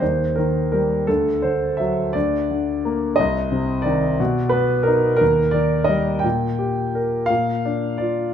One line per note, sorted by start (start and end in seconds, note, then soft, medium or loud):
0.00 1.06 D#2 soft
0.00 0.38 C5 medium
0.36 1.07 D#3 soft
0.36 0.70 A#4 soft
0.72 1.08 G3 soft
0.72 1.06 A#4 medium
1.07 2.12 D2 soft
1.07 1.45 A4 medium
1.42 2.13 D3 soft
1.42 1.80 C5 medium
1.77 2.14 F#3 soft
1.77 2.15 E5 medium
2.13 3.15 D2 soft
2.13 3.20 D5 medium
2.51 3.16 D3 soft
2.85 3.18 A#3 soft
3.16 4.17 C2 soft
3.16 3.86 D#5 medium
3.52 4.17 C3 soft
3.82 4.18 D#3 soft
3.82 4.54 D5 medium
4.20 5.19 B2 medium
4.49 5.19 B3 soft
4.49 4.87 B4 medium
4.83 5.15 A#4 medium
4.87 5.20 D#4 soft
5.17 5.54 A#4 medium
5.21 6.21 D#2 soft
5.51 6.22 D#3 soft
5.51 5.89 D5 medium
5.84 6.23 D#5 medium
5.89 6.23 G3 soft
6.19 6.97 G5 medium
6.24 7.27 A#2 soft
6.59 7.27 G4 soft
6.95 7.29 A#4 soft
7.26 8.01 F5 medium
7.30 8.33 A#2 soft
7.65 8.34 D4 soft
7.98 8.34 F4 soft
7.98 8.32 D5 medium